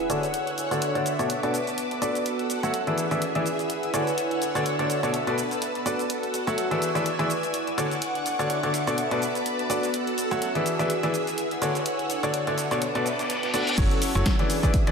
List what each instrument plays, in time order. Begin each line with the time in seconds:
Already playing: analog synth pad E4 B4 F#5 G#5, string machine E6, sub drop
0.10 upright piano D3 D4 F#4 A4 C#5 D5, analog synth pad D4, string machine C#5 F#5, closed hi-hat, shaker
0.23 snare, closed hi-hat, shaker
0.29 analog synth pad A4 E5
0.34 closed hi-hat, shaker
0.47 closed hi-hat
0.58 closed hi-hat, shaker
0.71 upright piano D3 D4 F#4 A4 C#5 D5, closed hi-hat, shaker
0.82 closed hi-hat, shaker
0.95 upright piano D3 D4 F#4 A4 C#5 D5, closed hi-hat
1.06 closed hi-hat, open hi-hat, shaker
1.19 upright piano B2 D4 F#4 A4 C#5 D5, closed hi-hat, shaker
1.30 analog synth pad B3, string machine B4 A5 D6, closed hi-hat, shaker
1.43 upright piano B2 D4 F#4 A4 B4 D5, closed hi-hat
1.54 snare, closed hi-hat, shaker
1.61 analog synth pad D5
1.67 closed hi-hat, shaker
1.71 analog synth pad F#4
1.78 closed hi-hat, shaker
1.91 closed hi-hat
2.02 upright piano D4 F#4 A4 B4 D5, closed hi-hat, shaker
2.15 snare, closed hi-hat, shaker
2.26 string machine A4 F#5 E6, closed hi-hat, tambourine, shaker
2.39 closed hi-hat
2.50 closed hi-hat, shaker
2.54 analog synth pad C#4
2.63 upright piano F#3 F#4 A4 C#5 E5 F#5, closed hi-hat, shaker
2.74 closed hi-hat, shaker
2.87 upright piano E3 E4 G#4 B4 D5 E5, snare, closed hi-hat
2.98 analog synth pad E4, string machine G#4 E5 E6, closed hi-hat, shaker
3.10 upright piano E3 E4 G#4 B4 D5 E5, analog synth pad B4 F#5 G#5, closed hi-hat, shaker
3.22 closed hi-hat, tambourine, shaker
3.35 upright piano E3 E4 G#4 B4 D5 E5, closed hi-hat
3.46 closed hi-hat, shaker
3.59 closed hi-hat, shaker
3.70 closed hi-hat, tambourine, shaker
3.83 closed hi-hat
3.94 upright piano D3 D4 F#4 A4 C#5 D5, analog synth pad D4, string machine C#5 F#5, closed hi-hat, shaker
4.07 analog synth pad A4, snare, closed hi-hat, shaker
4.18 closed hi-hat, shaker
4.31 closed hi-hat
4.42 analog synth pad E5, closed hi-hat, shaker
4.55 upright piano D3 D4 F#4 A4 C#5 D5, closed hi-hat, shaker
4.66 closed hi-hat, shaker
4.79 upright piano D3 D4 F#4 A4 C#5 D5, closed hi-hat
4.90 closed hi-hat, open hi-hat, shaker
5.03 upright piano B2 D4 F#4 A4 C#5 D5, closed hi-hat, shaker
5.14 analog synth pad B3, string machine B4 A5, closed hi-hat, shaker
5.25 upright piano B2 D4 F#4 A4 B4 D5, analog synth pad D5, closed hi-hat
5.38 snare, closed hi-hat, shaker
5.51 closed hi-hat, shaker
5.55 analog synth pad F#4
5.62 snare, closed hi-hat, shaker
5.75 snare, closed hi-hat
5.86 upright piano D4 F#4 A4 B4 D5, closed hi-hat, shaker
5.99 closed hi-hat, shaker
6.10 string machine A4 F#5 E6, closed hi-hat, tambourine, shaker
6.15 analog synth pad C#6
6.22 analog synth pad A5, closed hi-hat
6.34 closed hi-hat, tambourine, shaker
6.47 upright piano F#3 F#4 A4 C#5 E5 F#5, closed hi-hat, shaker
6.58 closed hi-hat, tambourine, shaker
6.71 upright piano E3 E4 G#4 B4 D5 E5, snare, closed hi-hat
6.82 analog synth pad E4, string machine D5 G#5, closed hi-hat, shaker
6.88 analog synth pad B4
6.95 upright piano E3 E4 G#4 B4 D5 E5, closed hi-hat, shaker
7.06 closed hi-hat, tambourine, shaker
7.19 upright piano E3 E4 G#4 B4 D5 E5, closed hi-hat
7.26 analog synth pad F#5 G#5, tambourine
7.30 closed hi-hat, shaker
7.43 closed hi-hat, shaker
7.54 closed hi-hat, tambourine, shaker
7.67 closed hi-hat
7.78 upright piano D3 D4 F#4 A4 C#5 D5, analog synth pad D4, string machine F#5 C#6 D6, closed hi-hat, shaker
7.91 snare, closed hi-hat, shaker
7.98 analog synth pad A4
8.02 closed hi-hat, tambourine, shaker
8.13 analog synth pad E5, closed hi-hat
8.26 closed hi-hat, tambourine, shaker
8.39 upright piano D3 D4 F#4 A4 C#5 D5, closed hi-hat, shaker
8.50 closed hi-hat, tambourine, shaker
8.63 upright piano D3 D4 F#4 A4 C#5 D5, closed hi-hat
8.74 closed hi-hat, open hi-hat, shaker
8.87 upright piano B2 D4 F#4 A4 C#5 D5, closed hi-hat, shaker
8.98 analog synth pad B3, string machine B4 A5, closed hi-hat, tambourine, shaker
9.11 upright piano B2 D4 F#4 A4 B4 D5, closed hi-hat
9.17 analog synth pad F#4
9.22 snare, closed hi-hat, tambourine, shaker
9.35 closed hi-hat, shaker
9.42 analog synth pad D5
9.46 closed hi-hat, tambourine, shaker
9.59 closed hi-hat
9.70 upright piano D4 F#4 A4 B4 D5, closed hi-hat, tambourine, shaker
9.83 snare, closed hi-hat, shaker
9.94 string machine A4 F#5 E6, closed hi-hat, tambourine, shaker
10.07 analog synth pad A5, closed hi-hat
10.18 analog synth pad C#4, closed hi-hat, tambourine, shaker
10.31 upright piano F#3 F#4 A4 C#5 E5 F#5, closed hi-hat, shaker
10.42 closed hi-hat, tambourine, shaker
10.55 upright piano E3 E4 G#4 B4 D5 E5, snare, closed hi-hat
10.66 analog synth pad E4, string machine G#4 E5 E6, closed hi-hat, tambourine, shaker
10.72 analog synth pad B4
10.79 upright piano E3 E4 G#4 B4 D5 E5, closed hi-hat, shaker
10.90 closed hi-hat, tambourine, shaker
11.03 upright piano E3 E4 G#4 B4 D5 E5, analog synth pad F#5, closed hi-hat
11.10 analog synth pad G#5
11.14 closed hi-hat, tambourine, shaker
11.27 closed hi-hat, shaker
11.38 closed hi-hat, tambourine, shaker
11.51 closed hi-hat
11.62 upright piano D3 D4 F#4 A4 C#5 D5, analog synth pad D4, string machine C#5 F#5, closed hi-hat, tambourine, shaker
11.75 analog synth pad A4, snare, closed hi-hat, shaker
11.86 closed hi-hat, tambourine, shaker
11.99 closed hi-hat
12.10 analog synth pad E5, closed hi-hat, tambourine, shaker
12.23 upright piano D3 D4 F#4 A4 C#5 D5, closed hi-hat, shaker
12.34 closed hi-hat, tambourine, shaker
12.47 upright piano D3 D4 F#4 A4 C#5 D5, closed hi-hat
12.58 snare, closed hi-hat, tambourine, shaker
12.71 upright piano B2 D4 F#4 A4 C#5 D5, snare, closed hi-hat, tambourine, shaker
12.82 analog synth pad B3, string machine B4 A5 D6, snare, closed hi-hat, tambourine, reverse cymbal, shaker
12.95 upright piano B2 D4 F#4 A4 B4 D5, snare, closed hi-hat, tambourine
13.05 analog synth pad D5, snare, closed hi-hat, tambourine, shaker
13.11 analog synth pad F#4
13.19 snare, closed hi-hat, tambourine, shaker
13.30 snare, closed hi-hat, tambourine, shaker
13.37 snare, tambourine
13.43 snare, closed hi-hat, tambourine
13.48 snare, tambourine
13.54 upright piano D4 F#4 A4 B4 D5, closed hi-hat, shaker
13.67 closed hi-hat, shaker
13.78 fm bass F#1, upright piano F#3 C#4 E4 F#4 A4 C#5, string machine A4 F#5 E6, kick, closed hi-hat, tambourine, crash, shaker
13.83 analog synth pad C#4
13.91 closed hi-hat
14.02 open hi-hat, tambourine, shaker
14.15 fm bass F#1, upright piano F#3 C#4 E4 F#4 A4 C#5, closed hi-hat, shaker
14.26 kick, snare, closed hi-hat, tambourine, shaker
14.39 upright piano E3 D4 E4 G#4 B4 D5, snare, closed hi-hat
14.50 analog synth pad E4, string machine G#4 E5 E6, open hi-hat, tambourine, shaker
14.62 upright piano E3 D4 E4 G#4 B4 D5, analog synth pad F#5, kick, closed hi-hat, shaker
14.74 analog synth pad B4, kick, closed hi-hat, tambourine, shaker
14.87 upright piano E3 D4 E4 G#4 B4 D5, finger snap, closed hi-hat